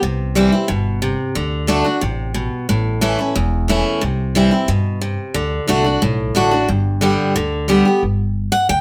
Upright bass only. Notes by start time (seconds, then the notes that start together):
0.02 C2
0.70 G1
1.36 D2
2.03 A1
2.69 A1
3.36 E1
4.03 C2
4.68 G2
5.35 D2
5.69 C2
6.02 B1
6.36 A1
6.69 G1
7.36 D2
8.03 G1
8.69 D2